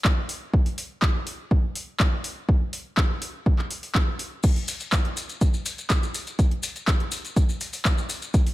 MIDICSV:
0, 0, Header, 1, 2, 480
1, 0, Start_track
1, 0, Tempo, 487805
1, 526, Time_signature, 4, 2, 24, 8
1, 8402, End_track
2, 0, Start_track
2, 0, Title_t, "Drums"
2, 46, Note_on_c, 9, 36, 112
2, 46, Note_on_c, 9, 39, 114
2, 144, Note_off_c, 9, 39, 0
2, 145, Note_off_c, 9, 36, 0
2, 286, Note_on_c, 9, 46, 102
2, 384, Note_off_c, 9, 46, 0
2, 526, Note_on_c, 9, 36, 112
2, 625, Note_off_c, 9, 36, 0
2, 650, Note_on_c, 9, 46, 58
2, 748, Note_off_c, 9, 46, 0
2, 766, Note_on_c, 9, 46, 99
2, 865, Note_off_c, 9, 46, 0
2, 1006, Note_on_c, 9, 36, 113
2, 1006, Note_on_c, 9, 39, 116
2, 1105, Note_off_c, 9, 36, 0
2, 1105, Note_off_c, 9, 39, 0
2, 1247, Note_on_c, 9, 46, 96
2, 1345, Note_off_c, 9, 46, 0
2, 1487, Note_on_c, 9, 36, 106
2, 1585, Note_off_c, 9, 36, 0
2, 1726, Note_on_c, 9, 46, 102
2, 1825, Note_off_c, 9, 46, 0
2, 1966, Note_on_c, 9, 36, 112
2, 1966, Note_on_c, 9, 39, 116
2, 2064, Note_off_c, 9, 39, 0
2, 2065, Note_off_c, 9, 36, 0
2, 2206, Note_on_c, 9, 46, 99
2, 2304, Note_off_c, 9, 46, 0
2, 2446, Note_on_c, 9, 36, 114
2, 2545, Note_off_c, 9, 36, 0
2, 2686, Note_on_c, 9, 46, 104
2, 2785, Note_off_c, 9, 46, 0
2, 2926, Note_on_c, 9, 36, 113
2, 2926, Note_on_c, 9, 39, 120
2, 3024, Note_off_c, 9, 39, 0
2, 3025, Note_off_c, 9, 36, 0
2, 3166, Note_on_c, 9, 46, 103
2, 3264, Note_off_c, 9, 46, 0
2, 3406, Note_on_c, 9, 36, 109
2, 3505, Note_off_c, 9, 36, 0
2, 3530, Note_on_c, 9, 39, 36
2, 3628, Note_off_c, 9, 39, 0
2, 3646, Note_on_c, 9, 46, 98
2, 3744, Note_off_c, 9, 46, 0
2, 3769, Note_on_c, 9, 46, 58
2, 3868, Note_off_c, 9, 46, 0
2, 3886, Note_on_c, 9, 36, 112
2, 3886, Note_on_c, 9, 39, 121
2, 3984, Note_off_c, 9, 36, 0
2, 3984, Note_off_c, 9, 39, 0
2, 4126, Note_on_c, 9, 46, 99
2, 4224, Note_off_c, 9, 46, 0
2, 4361, Note_on_c, 9, 70, 48
2, 4366, Note_on_c, 9, 36, 121
2, 4366, Note_on_c, 9, 42, 46
2, 4366, Note_on_c, 9, 49, 75
2, 4459, Note_off_c, 9, 70, 0
2, 4464, Note_off_c, 9, 36, 0
2, 4464, Note_off_c, 9, 42, 0
2, 4464, Note_off_c, 9, 49, 0
2, 4489, Note_on_c, 9, 46, 59
2, 4588, Note_off_c, 9, 46, 0
2, 4605, Note_on_c, 9, 70, 97
2, 4606, Note_on_c, 9, 46, 106
2, 4704, Note_off_c, 9, 46, 0
2, 4704, Note_off_c, 9, 70, 0
2, 4724, Note_on_c, 9, 70, 42
2, 4729, Note_on_c, 9, 42, 34
2, 4822, Note_off_c, 9, 70, 0
2, 4828, Note_off_c, 9, 42, 0
2, 4844, Note_on_c, 9, 70, 55
2, 4846, Note_on_c, 9, 36, 119
2, 4846, Note_on_c, 9, 39, 123
2, 4846, Note_on_c, 9, 42, 46
2, 4943, Note_off_c, 9, 70, 0
2, 4944, Note_off_c, 9, 36, 0
2, 4944, Note_off_c, 9, 39, 0
2, 4944, Note_off_c, 9, 42, 0
2, 4969, Note_on_c, 9, 42, 32
2, 5068, Note_off_c, 9, 42, 0
2, 5086, Note_on_c, 9, 46, 107
2, 5086, Note_on_c, 9, 70, 86
2, 5184, Note_off_c, 9, 46, 0
2, 5185, Note_off_c, 9, 70, 0
2, 5208, Note_on_c, 9, 70, 39
2, 5210, Note_on_c, 9, 42, 34
2, 5306, Note_off_c, 9, 70, 0
2, 5308, Note_off_c, 9, 42, 0
2, 5325, Note_on_c, 9, 70, 52
2, 5326, Note_on_c, 9, 36, 111
2, 5326, Note_on_c, 9, 42, 45
2, 5423, Note_off_c, 9, 70, 0
2, 5424, Note_off_c, 9, 36, 0
2, 5424, Note_off_c, 9, 42, 0
2, 5449, Note_on_c, 9, 70, 34
2, 5548, Note_off_c, 9, 70, 0
2, 5566, Note_on_c, 9, 46, 104
2, 5566, Note_on_c, 9, 70, 97
2, 5664, Note_off_c, 9, 46, 0
2, 5664, Note_off_c, 9, 70, 0
2, 5690, Note_on_c, 9, 42, 34
2, 5692, Note_on_c, 9, 70, 36
2, 5788, Note_off_c, 9, 42, 0
2, 5790, Note_off_c, 9, 70, 0
2, 5803, Note_on_c, 9, 70, 53
2, 5806, Note_on_c, 9, 36, 117
2, 5807, Note_on_c, 9, 39, 123
2, 5807, Note_on_c, 9, 42, 47
2, 5901, Note_off_c, 9, 70, 0
2, 5904, Note_off_c, 9, 36, 0
2, 5905, Note_off_c, 9, 39, 0
2, 5905, Note_off_c, 9, 42, 0
2, 5935, Note_on_c, 9, 70, 34
2, 6033, Note_off_c, 9, 70, 0
2, 6046, Note_on_c, 9, 46, 105
2, 6047, Note_on_c, 9, 70, 90
2, 6144, Note_off_c, 9, 46, 0
2, 6146, Note_off_c, 9, 70, 0
2, 6170, Note_on_c, 9, 42, 34
2, 6171, Note_on_c, 9, 70, 36
2, 6268, Note_off_c, 9, 42, 0
2, 6269, Note_off_c, 9, 70, 0
2, 6286, Note_on_c, 9, 36, 122
2, 6286, Note_on_c, 9, 42, 46
2, 6289, Note_on_c, 9, 70, 49
2, 6384, Note_off_c, 9, 42, 0
2, 6385, Note_off_c, 9, 36, 0
2, 6388, Note_off_c, 9, 70, 0
2, 6410, Note_on_c, 9, 42, 32
2, 6508, Note_off_c, 9, 42, 0
2, 6524, Note_on_c, 9, 70, 99
2, 6527, Note_on_c, 9, 46, 108
2, 6622, Note_off_c, 9, 70, 0
2, 6625, Note_off_c, 9, 46, 0
2, 6649, Note_on_c, 9, 70, 40
2, 6650, Note_on_c, 9, 42, 33
2, 6748, Note_off_c, 9, 42, 0
2, 6748, Note_off_c, 9, 70, 0
2, 6766, Note_on_c, 9, 36, 121
2, 6766, Note_on_c, 9, 39, 122
2, 6766, Note_on_c, 9, 42, 46
2, 6766, Note_on_c, 9, 70, 55
2, 6865, Note_off_c, 9, 36, 0
2, 6865, Note_off_c, 9, 39, 0
2, 6865, Note_off_c, 9, 42, 0
2, 6865, Note_off_c, 9, 70, 0
2, 6890, Note_on_c, 9, 42, 30
2, 6989, Note_off_c, 9, 42, 0
2, 7002, Note_on_c, 9, 70, 91
2, 7007, Note_on_c, 9, 46, 110
2, 7101, Note_off_c, 9, 70, 0
2, 7105, Note_off_c, 9, 46, 0
2, 7130, Note_on_c, 9, 42, 34
2, 7134, Note_on_c, 9, 70, 41
2, 7229, Note_off_c, 9, 42, 0
2, 7232, Note_off_c, 9, 70, 0
2, 7246, Note_on_c, 9, 36, 119
2, 7247, Note_on_c, 9, 42, 46
2, 7249, Note_on_c, 9, 70, 54
2, 7345, Note_off_c, 9, 36, 0
2, 7345, Note_off_c, 9, 42, 0
2, 7347, Note_off_c, 9, 70, 0
2, 7371, Note_on_c, 9, 70, 37
2, 7470, Note_off_c, 9, 70, 0
2, 7485, Note_on_c, 9, 70, 92
2, 7486, Note_on_c, 9, 46, 108
2, 7584, Note_off_c, 9, 70, 0
2, 7585, Note_off_c, 9, 46, 0
2, 7607, Note_on_c, 9, 70, 45
2, 7609, Note_on_c, 9, 46, 63
2, 7705, Note_off_c, 9, 70, 0
2, 7708, Note_off_c, 9, 46, 0
2, 7726, Note_on_c, 9, 39, 127
2, 7726, Note_on_c, 9, 42, 46
2, 7727, Note_on_c, 9, 36, 124
2, 7731, Note_on_c, 9, 70, 52
2, 7825, Note_off_c, 9, 36, 0
2, 7825, Note_off_c, 9, 39, 0
2, 7825, Note_off_c, 9, 42, 0
2, 7829, Note_off_c, 9, 70, 0
2, 7853, Note_on_c, 9, 70, 38
2, 7952, Note_off_c, 9, 70, 0
2, 7965, Note_on_c, 9, 70, 88
2, 7967, Note_on_c, 9, 46, 106
2, 8063, Note_off_c, 9, 70, 0
2, 8065, Note_off_c, 9, 46, 0
2, 8088, Note_on_c, 9, 70, 41
2, 8090, Note_on_c, 9, 42, 34
2, 8186, Note_off_c, 9, 70, 0
2, 8189, Note_off_c, 9, 42, 0
2, 8206, Note_on_c, 9, 70, 58
2, 8207, Note_on_c, 9, 36, 125
2, 8207, Note_on_c, 9, 42, 43
2, 8305, Note_off_c, 9, 36, 0
2, 8305, Note_off_c, 9, 42, 0
2, 8305, Note_off_c, 9, 70, 0
2, 8330, Note_on_c, 9, 46, 63
2, 8402, Note_off_c, 9, 46, 0
2, 8402, End_track
0, 0, End_of_file